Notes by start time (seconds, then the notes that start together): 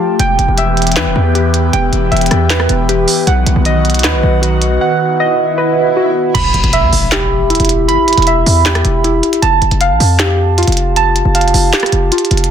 Already playing: F3 A3 F4 G4 F5 A5
0.19 E1 E3 B3 G4 G5, closed hi-hat
0.39 E1, closed hi-hat
0.48 E1
0.58 E5, closed hi-hat
0.77 closed hi-hat
0.82 closed hi-hat
0.87 closed hi-hat
0.92 closed hi-hat
0.96 E2 B4, snare, clap, closed hi-hat
1.06 E1
1.16 E2
1.35 G4, closed hi-hat
1.54 closed hi-hat
1.73 E1 G5, closed hi-hat
1.93 E1, closed hi-hat
2.11 E1 E5, closed hi-hat
2.17 closed hi-hat
2.21 closed hi-hat
2.26 closed hi-hat
2.31 E2, cross-stick, closed hi-hat
2.50 B4, snare, clap, closed hi-hat
2.60 cross-stick
2.69 E1, closed hi-hat
2.89 G4, closed hi-hat
3.08 open hi-hat
3.27 B1 D#3 F#4 F#5, closed hi-hat
3.46 B1, closed hi-hat
3.56 B1
3.65 D#5, closed hi-hat
3.85 closed hi-hat
3.90 closed hi-hat
3.94 closed hi-hat
3.99 closed hi-hat
4.04 D#2 B4, snare, clap, closed hi-hat
4.14 B1
4.23 B1
4.42 F#4, closed hi-hat
4.62 closed hi-hat
4.81 F#5, swell
5.20 D#5
5.58 B4
5.97 F#4
6.34 E1 B5, closed hi-hat, crash, impact
6.54 E1, closed hi-hat
6.64 E1, closed hi-hat
6.73 E5, closed hi-hat
6.83 E2
6.93 E1, open hi-hat
7.12 G4, snare, clap, closed hi-hat
7.50 E4, closed hi-hat
7.55 closed hi-hat
7.60 E1, closed hi-hat
7.65 closed hi-hat
7.69 closed hi-hat
7.88 G1 B5, closed hi-hat
8.08 closed hi-hat
8.13 closed hi-hat
8.18 E1, closed hi-hat
8.22 closed hi-hat
8.27 E5, closed hi-hat
8.46 E2, open hi-hat
8.65 G4, snare, clap, closed hi-hat
8.75 cross-stick, closed hi-hat
8.85 E1, closed hi-hat
9.04 E4, closed hi-hat
9.23 closed hi-hat, open hi-hat
9.33 closed hi-hat
9.42 F1 A5, closed hi-hat
9.62 F1, closed hi-hat
9.71 F1, closed hi-hat
9.81 F5, closed hi-hat
9.91 A1
10.00 F2, open hi-hat
10.19 G4, snare, clap, closed hi-hat
10.58 F4, closed hi-hat
10.63 closed hi-hat
10.68 F1, closed hi-hat
10.72 closed hi-hat
10.77 closed hi-hat
10.96 A5, closed hi-hat
11.16 closed hi-hat
11.25 F1
11.35 F5, closed hi-hat
11.41 closed hi-hat
11.48 closed hi-hat
11.54 F1, open hi-hat
11.73 G4, snare, clap, closed hi-hat
11.80 cross-stick, closed hi-hat
11.86 closed hi-hat
11.92 F1, closed hi-hat
12.12 F4, closed hi-hat
12.18 closed hi-hat
12.25 closed hi-hat
12.31 F1, closed hi-hat, open hi-hat
12.37 closed hi-hat
12.44 closed hi-hat